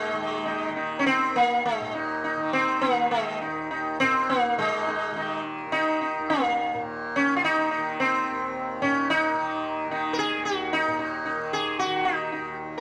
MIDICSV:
0, 0, Header, 1, 3, 480
1, 0, Start_track
1, 0, Tempo, 592885
1, 1814, Time_signature, 4, 2, 24, 8
1, 2765, Tempo, 573066
1, 5645, Tempo, 552486
1, 8525, Tempo, 533333
1, 10894, End_track
2, 0, Start_track
2, 0, Title_t, "Sitar"
2, 0, Program_c, 0, 104
2, 0, Note_on_c, 0, 56, 89
2, 370, Note_on_c, 0, 63, 38
2, 582, Note_off_c, 0, 56, 0
2, 595, Note_off_c, 0, 63, 0
2, 616, Note_on_c, 0, 63, 36
2, 800, Note_off_c, 0, 63, 0
2, 803, Note_on_c, 0, 61, 75
2, 854, Note_off_c, 0, 61, 0
2, 861, Note_on_c, 0, 60, 96
2, 1099, Note_on_c, 0, 58, 80
2, 1106, Note_off_c, 0, 60, 0
2, 1336, Note_off_c, 0, 58, 0
2, 1339, Note_on_c, 0, 56, 76
2, 1561, Note_off_c, 0, 56, 0
2, 1576, Note_on_c, 0, 63, 36
2, 1798, Note_off_c, 0, 63, 0
2, 1814, Note_on_c, 0, 63, 42
2, 2036, Note_off_c, 0, 63, 0
2, 2050, Note_on_c, 0, 60, 92
2, 2278, Note_on_c, 0, 58, 88
2, 2297, Note_off_c, 0, 60, 0
2, 2515, Note_off_c, 0, 58, 0
2, 2518, Note_on_c, 0, 56, 70
2, 2743, Note_off_c, 0, 56, 0
2, 2765, Note_on_c, 0, 63, 37
2, 2991, Note_off_c, 0, 63, 0
2, 3010, Note_on_c, 0, 63, 37
2, 3235, Note_off_c, 0, 63, 0
2, 3254, Note_on_c, 0, 60, 102
2, 3503, Note_off_c, 0, 60, 0
2, 3503, Note_on_c, 0, 58, 84
2, 3724, Note_off_c, 0, 58, 0
2, 3739, Note_on_c, 0, 63, 35
2, 3746, Note_on_c, 0, 56, 72
2, 3962, Note_off_c, 0, 63, 0
2, 3985, Note_on_c, 0, 63, 34
2, 4205, Note_off_c, 0, 63, 0
2, 4226, Note_on_c, 0, 63, 34
2, 4428, Note_off_c, 0, 56, 0
2, 4445, Note_off_c, 0, 63, 0
2, 4696, Note_on_c, 0, 63, 91
2, 4932, Note_off_c, 0, 63, 0
2, 4942, Note_on_c, 0, 63, 34
2, 5159, Note_off_c, 0, 63, 0
2, 5180, Note_on_c, 0, 58, 86
2, 5615, Note_off_c, 0, 58, 0
2, 5910, Note_on_c, 0, 61, 78
2, 6085, Note_off_c, 0, 61, 0
2, 6088, Note_on_c, 0, 65, 67
2, 6136, Note_off_c, 0, 65, 0
2, 6158, Note_on_c, 0, 63, 89
2, 6379, Note_off_c, 0, 63, 0
2, 6389, Note_on_c, 0, 63, 36
2, 6607, Note_off_c, 0, 63, 0
2, 6640, Note_on_c, 0, 60, 85
2, 7348, Note_off_c, 0, 60, 0
2, 7352, Note_on_c, 0, 61, 79
2, 7590, Note_off_c, 0, 61, 0
2, 7596, Note_on_c, 0, 63, 92
2, 8264, Note_off_c, 0, 63, 0
2, 8303, Note_on_c, 0, 63, 37
2, 8493, Note_on_c, 0, 70, 73
2, 8516, Note_off_c, 0, 63, 0
2, 8534, Note_off_c, 0, 70, 0
2, 8540, Note_on_c, 0, 68, 96
2, 8775, Note_off_c, 0, 68, 0
2, 8779, Note_on_c, 0, 66, 75
2, 9023, Note_off_c, 0, 66, 0
2, 9028, Note_on_c, 0, 63, 71
2, 9245, Note_off_c, 0, 63, 0
2, 9264, Note_on_c, 0, 63, 33
2, 9483, Note_off_c, 0, 63, 0
2, 9501, Note_on_c, 0, 63, 36
2, 9721, Note_off_c, 0, 63, 0
2, 9752, Note_on_c, 0, 68, 85
2, 9983, Note_off_c, 0, 68, 0
2, 9987, Note_on_c, 0, 66, 88
2, 10218, Note_on_c, 0, 63, 63
2, 10226, Note_off_c, 0, 66, 0
2, 10437, Note_off_c, 0, 63, 0
2, 10462, Note_on_c, 0, 63, 33
2, 10678, Note_off_c, 0, 63, 0
2, 10894, End_track
3, 0, Start_track
3, 0, Title_t, "Tanpura"
3, 0, Program_c, 1, 104
3, 0, Note_on_c, 1, 39, 61
3, 0, Note_on_c, 1, 46, 60
3, 0, Note_on_c, 1, 51, 54
3, 106, Note_off_c, 1, 51, 0
3, 106, Note_on_c, 1, 51, 61
3, 552, Note_off_c, 1, 51, 0
3, 552, Note_on_c, 1, 51, 63
3, 1001, Note_off_c, 1, 39, 0
3, 1004, Note_on_c, 1, 39, 59
3, 1455, Note_off_c, 1, 46, 0
3, 1458, Note_on_c, 1, 46, 65
3, 1918, Note_off_c, 1, 51, 0
3, 1918, Note_on_c, 1, 51, 61
3, 2361, Note_off_c, 1, 51, 0
3, 2361, Note_on_c, 1, 51, 61
3, 2801, Note_off_c, 1, 39, 0
3, 2805, Note_on_c, 1, 39, 58
3, 3261, Note_off_c, 1, 46, 0
3, 3264, Note_on_c, 1, 46, 65
3, 3729, Note_off_c, 1, 46, 0
3, 3729, Note_on_c, 1, 46, 57
3, 4192, Note_off_c, 1, 51, 0
3, 4192, Note_on_c, 1, 51, 58
3, 4646, Note_off_c, 1, 51, 0
3, 4646, Note_on_c, 1, 51, 59
3, 5081, Note_off_c, 1, 39, 0
3, 5085, Note_on_c, 1, 39, 58
3, 5543, Note_off_c, 1, 46, 0
3, 5543, Note_on_c, 1, 46, 59
3, 5997, Note_off_c, 1, 51, 0
3, 5997, Note_on_c, 1, 51, 54
3, 6448, Note_off_c, 1, 51, 0
3, 6448, Note_on_c, 1, 51, 58
3, 6900, Note_off_c, 1, 39, 0
3, 6903, Note_on_c, 1, 39, 61
3, 7345, Note_off_c, 1, 46, 0
3, 7348, Note_on_c, 1, 46, 60
3, 7805, Note_off_c, 1, 51, 0
3, 7805, Note_on_c, 1, 51, 61
3, 8254, Note_off_c, 1, 51, 0
3, 8254, Note_on_c, 1, 51, 67
3, 8700, Note_off_c, 1, 39, 0
3, 8703, Note_on_c, 1, 39, 63
3, 9153, Note_off_c, 1, 46, 0
3, 9157, Note_on_c, 1, 46, 63
3, 9603, Note_off_c, 1, 51, 0
3, 9603, Note_on_c, 1, 51, 52
3, 10049, Note_off_c, 1, 51, 0
3, 10049, Note_on_c, 1, 51, 61
3, 10499, Note_off_c, 1, 39, 0
3, 10502, Note_on_c, 1, 39, 57
3, 10894, Note_off_c, 1, 39, 0
3, 10894, Note_off_c, 1, 46, 0
3, 10894, Note_off_c, 1, 51, 0
3, 10894, End_track
0, 0, End_of_file